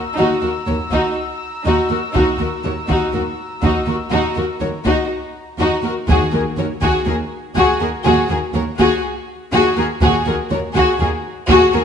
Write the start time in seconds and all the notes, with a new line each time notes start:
Already playing: A#5 E6, impact
0.17 D#2 D#4 F#4
0.42 D#2 F#4 A#4
0.66 D#2 F#4 A#4 C#5
0.91 D#2 D#4 F#4, taiko
1.65 D#2 D#4 F#4
1.90 D#2 F#4 A#4
2.14 D#2 D#4 F#4, taiko
2.38 D#2 F#4 A#4
2.64 D#2 F#4 A#4 C#5
2.88 D#2 D#4 F#4, taiko
3.13 D#2 F#4 A#4
3.62 D#2 D#4 F#4, taiko
3.87 D#2 F#4 A#4
4.11 D#2 D#4 F#4
4.36 D#2 F#4 A#4
4.60 D#2 F#4 A#4 C#5
4.85 D#2 D#4 F#4, taiko
5.59 D#2 D#4 F#4
5.84 D#2 F#4 A#4
6.08 D#2 D#3 F#4 G#4, taiko
6.33 D#2 F#4 G#4 A#4
6.57 D#2 F#4 A#4 C#5
6.82 D#2 F#4 G#4, taiko
7.07 D#2 F#4 G#4 A#4
7.56 D#2 F#4 G#4, taiko
7.81 D#2 F#4 G#4 A#4
8.04 D#2 F#4 G#4
8.30 D#2 F#4 G#4 A#4
8.54 D#2 F#4 A#4 C#5
8.78 D#2 F#4 G#4, taiko
9.52 D#2 F#4 G#4
9.77 D#2 F#4 G#4 A#4
10.01 D#2 F#4 G#4, taiko
10.26 D#2 F#4 G#4 A#4
10.50 D#2 F#4 A#4 C#5
10.75 D#2 F#4 G#4, taiko
11.00 D#2 F#4 G#4 A#4
11.49 D#2 F#4 G#4, taiko
11.73 D#2 F#4 G#4 A#4